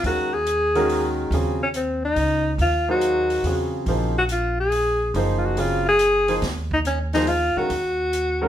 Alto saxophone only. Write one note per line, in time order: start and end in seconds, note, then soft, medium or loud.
0.06 0.35 F#4 medium
0.34 1.18 G#4 medium
1.63 1.68 C#4 medium
1.76 2.02 C4 medium
2.05 2.56 D#4 loud
2.61 2.87 F4 medium
2.91 3.71 F#4 medium
4.18 4.24 F#4 medium
4.32 4.57 F4 medium
4.60 5.12 G#4 medium
5.38 5.47 F4 medium
5.46 5.62 F#4 medium
5.60 5.88 F4 medium
5.88 6.40 G#4 loud
6.73 6.79 D#4 medium
6.87 6.99 C#4 medium
7.14 7.30 D#4 medium
7.28 7.59 F4 medium
7.58 8.48 F#4 medium